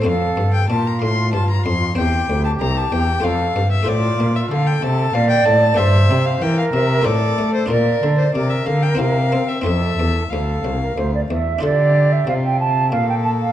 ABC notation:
X:1
M:3/4
L:1/16
Q:1/4=94
K:F
V:1 name="Violin"
f3 g a b c'2 a b c'2 | g3 a b a g2 f3 e | d3 e f g a2 f g a2 | e3 f g f e2 d3 c |
B3 c d e f g f3 e | e4 f6 z2 | [K:Dm] G4 F4 A4 |]
V:2 name="Flute"
A4 F8 | G8 A2 z2 | F4 A4 d4 | c4 B4 A4 |
d4 B8 | A4 A3 B c d e2 | [K:Dm] d3 e f g a2 f g a f |]
V:3 name="Harpsichord"
[A,CA]12 | [Cc]8 [A,Fc]4 | [A,Fc]12 | [B,Gc]8 [A,Fc]4 |
[DFB]8 [CEB]4 | [CFA]12 | [K:Dm] [DFA]12 |]
V:4 name="Harpsichord" clef=bass
F,,2 G,,2 B,,2 A,,2 G,,2 F,,2 | E,,2 D,,2 C,,2 E,,2 F,,2 G,,2 | A,,2 B,,2 D,2 C,2 B,,2 A,,2 | G,,2 C,2 E,2 C,2 A,,2 A,2 |
B,,2 D,2 C,2 D,2 C,2 C2 | F,,2 E,,2 D,,2 C,,2 D,,2 E,,2 | [K:Dm] D,4 C,4 B,,4 |]
V:5 name="Cello" clef=bass
F,,2 G,,2 B,,2 A,,2 G,,2 F,,2 | E,,2 D,,2 C,,2 E,,2 F,,2 G,,2 | A,,2 B,,2 D,2 C,2 B,,2 A,,2 | G,,2 C,2 E,2 C,2 A,,2 A,2 |
B,,2 D,2 C,2 D,2 C,2 C2 | F,,2 E,,2 D,,2 C,,2 D,,2 E,,2 | [K:Dm] D,4 C,4 B,,4 |]